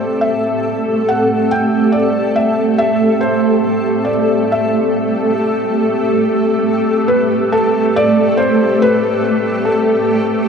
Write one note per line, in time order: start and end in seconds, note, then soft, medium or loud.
0.00 10.48 A3 medium
0.00 10.48 C4 medium
0.00 10.48 G4 medium
0.00 10.48 A4 medium
0.00 0.24 C5 medium
0.21 1.10 E5 medium
1.09 1.52 F#5 medium
1.51 1.95 G5 medium
1.92 2.37 D5 medium
2.36 2.77 E5 medium
2.78 3.19 E5 medium
3.21 4.10 C5 medium
4.05 4.50 D5 medium
4.52 5.33 E5 medium
7.08 7.52 B4 medium
7.52 7.96 A4 medium
7.96 8.39 D5 medium
8.37 8.81 C5 medium
8.82 9.69 B4 medium
9.65 10.48 A4 medium